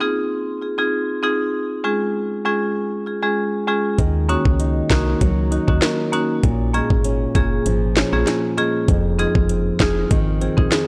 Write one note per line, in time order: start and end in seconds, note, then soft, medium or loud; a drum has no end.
0.00 0.13 C4 medium
0.00 0.14 D#4 medium
0.00 0.14 F4 medium
0.00 0.14 G#4 medium
0.62 0.68 F4 medium
0.62 0.69 G#4 loud
0.78 0.90 C4 medium
0.78 0.90 D#4 medium
0.78 0.90 F4 medium
0.78 0.90 G#4 medium
1.23 1.36 C4 medium
1.23 1.36 D#4 medium
1.23 1.36 F4 medium
1.23 1.36 G#4 loud
1.84 1.97 G#3 medium
1.84 1.97 C#4 medium
1.84 1.97 F4 medium
1.84 1.97 G#4 medium
2.45 2.58 G#3 medium
2.45 2.58 C#4 medium
2.45 2.59 F4 medium
2.45 2.59 G#4 loud
3.06 3.13 F4 medium
3.06 3.13 G#4 loud
3.22 3.34 G#3 medium
3.22 3.34 C#4 medium
3.22 3.34 F4 medium
3.22 3.35 G#4 medium
3.67 3.81 G#3 medium
3.67 3.81 C#4 medium
3.67 3.81 F4 medium
3.67 3.81 G#4 loud
3.99 4.37 D#2 loud
3.99 6.43 D#3 medium
3.99 kick loud
3.99 closed hi-hat medium
4.29 4.42 A#3 medium
4.29 4.42 C#4 medium
4.29 6.13 C#4 medium
4.29 4.42 D#4 medium
4.29 4.42 F#4 loud
4.29 closed hi-hat medium
4.45 4.82 C#2 medium
4.45 kick medium
4.60 5.51 D#4 medium
4.60 closed hi-hat medium
4.90 5.15 C2 loud
4.90 5.03 A#3 medium
4.90 5.03 C#4 medium
4.90 5.03 D#4 medium
4.90 5.04 F#4 medium
4.90 5.82 A#4 medium
4.90 kick medium
4.90 snare loud
4.90 closed hi-hat medium
5.21 5.59 C#2 loud
5.21 6.50 F#3 medium
5.21 kick medium
5.21 closed hi-hat medium
5.51 5.58 D#4 medium
5.51 6.50 D#4 medium
5.51 5.58 F#4 loud
5.51 closed hi-hat medium
5.67 5.80 D#2 medium
5.67 5.79 A#3 medium
5.67 5.79 C#4 medium
5.67 5.79 D#4 medium
5.67 5.80 F#4 medium
5.67 kick loud
5.82 6.77 A#4 medium
5.82 snare loud
5.82 closed hi-hat medium
6.12 6.26 A#3 medium
6.12 6.26 C#4 medium
6.12 6.74 C#4 medium
6.12 6.26 D#4 medium
6.12 6.26 F#4 medium
6.12 closed hi-hat medium
6.43 6.82 A#1 loud
6.43 8.88 A#2 medium
6.43 kick loud
6.43 closed hi-hat medium
6.74 8.58 G#3 medium
6.74 6.87 A#3 medium
6.74 6.87 C#4 medium
6.74 6.87 F4 medium
6.74 6.87 G#4 loud
6.74 closed hi-hat medium
6.90 7.27 G#1 medium
6.90 kick medium
7.04 7.96 C#4 medium
7.04 closed hi-hat medium
7.35 7.60 F#1 loud
7.35 7.48 A#3 medium
7.35 7.48 C#4 medium
7.35 7.48 F4 medium
7.35 8.27 G#4 medium
7.35 7.49 G#4 loud
7.35 kick medium
7.35 closed hi-hat medium
7.66 8.04 G#1 loud
7.66 10.11 F3 medium
7.66 closed hi-hat medium
7.96 8.95 C#4 medium
7.96 8.03 F4 medium
7.96 8.03 G#4 loud
7.96 snare loud
7.96 closed hi-hat medium
8.12 8.24 A#1 loud
8.12 8.24 A#3 medium
8.12 8.24 C#4 medium
8.12 8.24 F4 medium
8.12 8.25 G#4 medium
8.27 9.80 G#4 medium
8.27 snare medium
8.27 closed hi-hat medium
8.57 9.19 G#3 medium
8.57 8.71 A#3 medium
8.57 8.71 C#4 medium
8.57 8.71 F4 medium
8.57 8.71 G#4 loud
8.57 closed hi-hat medium
8.88 9.26 F1 loud
8.88 10.87 F2 medium
8.88 kick loud
8.88 closed hi-hat medium
9.19 10.87 G#3 medium
9.19 9.32 C4 medium
9.19 9.32 D#4 medium
9.19 9.32 F4 medium
9.19 9.32 G#4 loud
9.19 closed hi-hat medium
9.35 9.72 F#1 medium
9.35 kick medium
9.49 10.40 C4 medium
9.49 closed hi-hat medium
9.80 10.05 F1 medium
9.80 9.93 C4 medium
9.80 9.93 D#4 medium
9.80 9.93 F4 medium
9.80 10.72 G#4 medium
9.80 9.93 G#4 medium
9.80 kick medium
9.80 snare loud
9.80 closed hi-hat medium
10.11 10.49 G#1 loud
10.11 10.87 D#3 medium
10.11 kick loud
10.11 closed hi-hat medium
10.41 10.87 C4 medium
10.41 10.48 F4 medium
10.41 10.48 G#4 loud
10.41 closed hi-hat medium
10.57 10.69 A#1 loud
10.57 10.69 C4 medium
10.57 10.69 D#4 medium
10.57 10.69 F4 medium
10.57 10.69 G#4 medium
10.57 kick loud
10.72 10.87 G#4 medium
10.72 snare loud
10.72 closed hi-hat medium